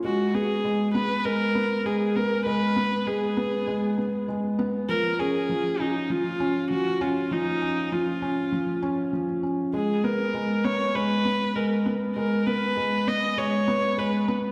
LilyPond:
<<
  \new Staff \with { instrumentName = "Viola" } { \time 4/4 \key gis \dorian \tempo 4 = 99 fis'8 gis'4 b'8 ais'4 gis'8 ais'8 | b'4 gis'2 r4 | ais'8 gis'4 dis'8 eis'4 fis'8 eis'8 | dis'4 eis'2 r4 |
gis'8 ais'4 cis''8 b'4 ais'8 r8 | ais'8 b'4 dis''8 cis''4 b'8 r8 | }
  \new Staff \with { instrumentName = "Felt piano" } { \time 4/4 \key gis \dorian gis8 b8 gis8 b8 gis8 b8 gis8 b8 | gis8 b8 gis8 b8 gis8 b8 gis8 b8 | eis8 cis'8 eis8 cis'8 eis8 cis'8 eis8 cis'8 | eis8 cis'8 eis8 cis'8 eis8 cis'8 eis8 cis'8 |
gis8 b8 gis8 b8 gis8 b8 gis8 b8 | gis8 b8 gis8 b8 gis8 b8 gis8 b8 | }
>>